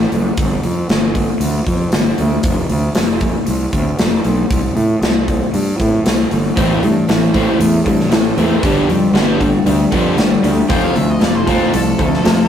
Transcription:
0.12 fingered electric bass F#1, open hi-hat
0.37 fingered electric bass G1, kick, open hi-hat
0.63 fingered electric bass F2, open hi-hat
0.89 fingered electric bass G1, snare, open hi-hat
1.15 kick, open hi-hat
1.40 fingered electric bass D2, open hi-hat
1.67 fingered electric bass F2, kick, open hi-hat
1.92 fingered electric bass G1, snare, open hi-hat
2.18 fingered electric bass D2, open hi-hat
2.43 fingered electric bass F1, kick, open hi-hat
2.69 fingered electric bass D2, open hi-hat
2.95 fingered electric bass F1, snare, open hi-hat
3.21 kick, open hi-hat
3.47 fingered electric bass C2, open hi-hat
3.73 fingered electric bass D2, kick, open hi-hat
3.99 fingered electric bass F1, snare, open hi-hat
4.25 fingered electric bass B1, open hi-hat
4.50 fingered electric bass C2, kick, open hi-hat
4.76 fingered electric bass A2, open hi-hat
5.02 fingered electric bass C2, snare, open hi-hat
5.28 kick, open hi-hat
5.54 fingered electric bass G2, open hi-hat
5.80 fingered electric bass A2, kick, open hi-hat
6.06 fingered electric bass C2, snare, open hi-hat
6.31 fingered electric bass G1, open hi-hat
6.56 fingered electric bass A1, twelve-string acoustic guitar A2 E3 A3 C4 E4 A4, overdriven electric guitar A2 E3 C4, kick, open hi-hat
6.82 fingered electric bass G2, overdriven electric guitar A2 E3, twelve-string acoustic guitar A3 C4 E4 A4, open hi-hat
7.07 fingered electric bass A1, twelve-string acoustic guitar A2 E3 A3 C4 E4 A4, overdriven electric guitar A2 E3, snare, open hi-hat
7.33 overdriven electric guitar A2 E3 C4, twelve-string acoustic guitar A3 C4 E4 A4, kick, open hi-hat
7.59 fingered electric bass E2, overdriven electric guitar A2 E3, twelve-string acoustic guitar A3 C4 E4 A4, open hi-hat
7.84 fingered electric bass G2, overdriven electric guitar A2 E3, twelve-string acoustic guitar A3 C4 E4 A4, kick, open hi-hat
8.00 snare
8.11 fingered electric bass A1, twelve-string acoustic guitar A2 E3 A3 C4 E4 A4, overdriven electric guitar A2 E3, snare, open hi-hat
8.37 fingered electric bass E2, overdriven electric guitar A2 E3 C4, twelve-string acoustic guitar A3 C4 E4 A4, open hi-hat
8.62 fingered electric bass G1, overdriven electric guitar G2 D3 G3, twelve-string acoustic guitar G3 B3 D4 G4 A4, kick, open hi-hat
8.88 fingered electric bass F2, overdriven electric guitar G2 D3 G3, twelve-string acoustic guitar D4 G4 A4, open hi-hat
9.13 fingered electric bass G1, overdriven electric guitar G2 D3 G3, twelve-string acoustic guitar G3 B3 D4 G4 A4, snare, open hi-hat
9.39 overdriven electric guitar G2 D3 G3, twelve-string acoustic guitar D4 G4 A4, kick, open hi-hat
9.64 fingered electric bass D2, overdriven electric guitar G2 D3 G3, twelve-string acoustic guitar B3 D4 G4 A4, open hi-hat
9.90 fingered electric bass F2, overdriven electric guitar G2 D3 G3 B3, twelve-string acoustic guitar D4 G4 A4, kick, open hi-hat
10.17 fingered electric bass G1, overdriven electric guitar G2 D3, twelve-string acoustic guitar G3 B3 D4 G4 A4, snare, open hi-hat
10.42 fingered electric bass D2, overdriven electric guitar G2 D3 G3, twelve-string acoustic guitar D4 G4 A4, open hi-hat
10.67 fingered electric bass F1, twelve-string acoustic guitar F3 A3 C4 F4 A4, overdriven electric guitar F3 C4 F4, lead electric guitar G5, kick, open hi-hat
10.84 lead electric guitar F5
10.93 fingered electric bass D2, overdriven electric guitar F3 A3 C4, twelve-string acoustic guitar C4 F4 A4, lead electric guitar E5, open hi-hat
11.11 lead electric guitar D#5
11.19 fingered electric bass F1, twelve-string acoustic guitar F3 A3 C4 F4 A4, overdriven electric guitar F3 C4, snare, open hi-hat
11.24 lead electric guitar D5
11.35 lead electric guitar C5
11.45 overdriven electric guitar F3 A3 C4 F4, twelve-string acoustic guitar C4 F4 A4, lead electric guitar A4, kick, open hi-hat
11.72 fingered electric bass C2, overdriven electric guitar F3 C4, twelve-string acoustic guitar A3 C4 F4 A4, lead electric guitar A4, open hi-hat
11.98 fingered electric bass D2, overdriven electric guitar F3 A3 C4, twelve-string acoustic guitar C4 F4 A4, kick, open hi-hat
12.13 snare
12.24 fingered electric bass F1, twelve-string acoustic guitar F3 A3 C4 F4 A4, overdriven electric guitar F3 C4, snare, open hi-hat

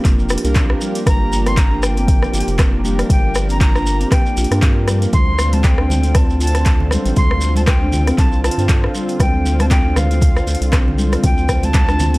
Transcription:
Already playing: analog synth pad F3 A#3 G4, analog polysynth A#3 D4 F4 G4 A#4
0.05 analog synth bass F1, kick, clap, closed hi-hat, shekere
0.19 shekere
0.29 marimba F4, cross-stick, closed hi-hat, shekere
0.38 closed hi-hat
0.44 analog synth bass C2, analog polysynth A#3 D4 F4 G4 A#4, closed hi-hat, shekere
0.55 marimba C4, kick, clap, closed hi-hat, shekere
0.70 cross-stick
0.81 marimba G3, shekere
0.95 closed hi-hat, shekere
1.06 analog synth bass G1, analog polysynth A#3 D4 F4 G4 A#4, flute A#5, kick, cross-stick, closed hi-hat, shekere
1.33 shekere
1.46 marimba C4, flute C6, cross-stick, closed hi-hat, shekere
1.57 flute A#5, kick, clap, closed hi-hat, shekere
1.71 marimba D4
1.83 flute G5, cross-stick, shekere
1.97 marimba C4, closed hi-hat, shekere
2.08 kick, closed hi-hat, shekere
2.23 cross-stick, shekere
2.33 analog synth bass G1, marimba F4, closed hi-hat, shekere
2.40 closed hi-hat
2.48 analog synth bass F1, closed hi-hat, shekere
2.59 marimba C4, kick, cross-stick, clap, closed hi-hat, shekere
2.84 marimba G3, analog polysynth A#3 D4 F4 G4 A#4, shekere
2.99 cross-stick, closed hi-hat, shekere
3.09 analog synth bass G1, marimba G3, analog polysynth A#3 D4 F4 G4 A#4, flute G5, kick, closed hi-hat, shekere
3.35 cross-stick, shekere
3.49 marimba C4, flute A#5, closed hi-hat, shekere
3.61 flute A#5, kick, clap, closed hi-hat, shekere
3.75 marimba D4, cross-stick, shekere
3.86 shekere
4.00 marimba C4, closed hi-hat, shekere
4.11 flute G5, kick, cross-stick, clap, closed hi-hat, shekere
4.26 shekere
4.37 analog synth bass A#1, marimba F4, closed hi-hat, shekere
4.44 closed hi-hat
4.51 analog synth bass G2, analog polysynth A#3 D4 F4 G4 A#4, cross-stick, closed hi-hat, shekere
4.62 marimba C4, kick, clap, closed hi-hat, shekere
4.88 marimba G3, cross-stick, closed hi-hat, shekere
5.02 closed hi-hat, shekere
5.13 analog synth bass D2, analog synth pad D3 C4 F4, marimba G3, analog polysynth C4 D4 F4 A4 C5, flute C6, kick, closed hi-hat, high conga, low conga, shekere
5.39 cross-stick, shekere
5.53 marimba C4, flute A5, closed hi-hat, high conga, shekere
5.64 flute G5, kick, clap, closed hi-hat, shekere
5.78 marimba D4, cross-stick
5.90 high conga, low conga, shekere
6.03 marimba C4, closed hi-hat, shekere
6.15 flute A5, kick, cross-stick, closed hi-hat, shekere
6.30 shekere
6.40 marimba F4, flute A5, closed hi-hat, shekere
6.47 closed hi-hat
6.55 cross-stick, closed hi-hat, shekere
6.66 marimba C4, kick, clap, closed hi-hat, shekere
6.80 low conga
6.91 marimba G3, analog polysynth C4 D4 F4 A4 C5, cross-stick, high conga, shekere
7.05 analog synth bass A1, closed hi-hat, shekere
7.16 analog synth bass D2, marimba G3, analog polysynth C4 D4 F4 A4 C5, flute C6, kick, closed hi-hat, high conga, low conga, shekere
7.31 cross-stick
7.41 shekere
7.56 marimba C4, flute A5, closed hi-hat, high conga, shekere
7.67 flute G5, kick, cross-stick, clap, closed hi-hat, shekere
7.82 marimba D4, high conga
7.92 high conga, low conga, shekere
8.07 marimba C4, cross-stick, closed hi-hat, shekere
8.18 analog synth bass C2, flute A5, kick, clap, closed hi-hat, shekere
8.32 shekere
8.43 marimba F4, flute A5, cross-stick, closed hi-hat, shekere
8.51 closed hi-hat
8.58 analog synth bass G2, analog polysynth C4 D4 F4 A4 C5, closed hi-hat, shekere
8.69 marimba C4, kick, clap, closed hi-hat, shekere
8.84 cross-stick
8.94 marimba G3, shekere
9.09 closed hi-hat, shekere
9.20 analog synth bass D2, marimba G3, analog polysynth C4 D4 F4 A4 C5, flute G5, kick, cross-stick, closed hi-hat, high conga, low conga, shekere
9.46 shekere
9.59 marimba C4, flute A5, cross-stick, closed hi-hat, high conga, shekere
9.70 flute G5, kick, clap, closed hi-hat, shekere
9.85 marimba D4
9.96 flute F5, cross-stick, high conga, low conga, shekere
10.11 marimba C4, closed hi-hat, shekere
10.21 kick, closed hi-hat, shekere
10.36 cross-stick, shekere
10.47 analog synth bass D2, marimba F4, closed hi-hat, shekere
10.55 closed hi-hat
10.61 analog synth bass C2, closed hi-hat, shekere
10.72 marimba C4, kick, cross-stick, clap, closed hi-hat, shekere
10.88 low conga
10.98 marimba G3, analog polysynth C4 D4 F4 A4 C5, high conga, shekere
11.12 cross-stick, closed hi-hat, shekere
11.23 analog synth bass D2, marimba G3, analog polysynth C4 D4 F4 A4 C5, flute G5, kick, closed hi-hat, high conga, low conga, shekere
11.37 shekere
11.49 kick, cross-stick, closed hi-hat, shekere
11.63 marimba C4, flute A5, closed hi-hat, high conga, shekere
11.74 kick, clap, closed hi-hat, shekere
11.88 marimba D4, cross-stick, high conga, shekere
12.00 high conga, low conga, shekere
12.14 marimba C4, closed hi-hat, shekere

